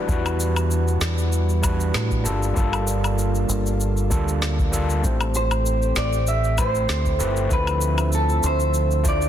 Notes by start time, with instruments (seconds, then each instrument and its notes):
Already playing: analog synth pad E3 G3 B3 D4 F#4, tine electric piano G3 D4 E4 F#4 B4
0.07 fingered electric bass E2, tine electric piano G3 D4 E4 F#4 B4, kick, shaker
0.26 low woodblock, shaker
0.40 shaker
0.56 low woodblock, shaker
0.71 shaker
0.88 shaker
1.01 fingered electric bass E2, snare, shaker
1.18 shaker
1.32 shaker
1.49 shaker
1.62 tine electric piano G3 D4 E4 F#4 B4, kick, low woodblock, shaker
1.80 shaker
1.94 fingered electric bass A2, snare, shaker
2.11 kick, shaker
2.23 fingered electric bass G1, tine electric piano G3 A#3 D4 F4 A4, analog synth pad G3 A#3 F4 A4, shaker
2.43 shaker
2.54 fingered electric bass G1, tine electric piano G3 A#3 D4 F4 A4, kick, shaker
2.73 low woodblock, shaker
2.87 shaker
3.04 low woodblock, shaker
3.18 shaker
3.35 shaker
3.49 fingered electric bass G1, shaker
3.66 shaker
3.80 shaker
3.97 shaker
4.10 fingered electric bass D2, tine electric piano G3 A#3 D4 F4 A4, kick, shaker
4.28 shaker
4.42 snare, shaker
4.59 kick, shaker
4.72 tine electric piano G3 A#3 D4 F4 A4, kick, shaker
4.90 shaker
5.02 fingered electric bass A1, tine electric piano A3 C4 E4 G4 C5, analog synth pad A3 C4 G4, kick, shaker
5.21 low woodblock, shaker
5.35 clean electric guitar C5, shaker
5.51 low woodblock, shaker
5.66 shaker
5.82 shaker
5.96 fingered electric bass A1, clean electric guitar D5, snare, shaker
6.13 shaker
6.27 clean electric guitar E5, shaker
6.44 shaker
6.58 tine electric piano A3 C4 E4 G4 C5, clean electric guitar C5, kick, low woodblock, shaker
6.75 shaker
6.89 fingered electric bass D2, snare, shaker
7.06 kick, shaker
7.19 fingered electric bass G1, tine electric piano A3 C4 E4 G4 B4, shaker
7.36 shaker
7.49 fingered electric bass D2, analog synth pad D3 F3 C4 E5, tine electric piano A3 C4 D4 E4 F4, kick, shaker
7.53 clean electric guitar B4
7.67 low woodblock, shaker
7.81 shaker
7.98 low woodblock, shaker
8.12 clean electric guitar A4, shaker
8.29 shaker
8.43 fingered electric bass D2, clean electric guitar C5, shaker
8.60 shaker
8.74 shaker
8.91 shaker
9.04 tine electric piano A3 D4 E4 F4 C5, kick, shaker
9.08 clean electric guitar D5
9.22 shaker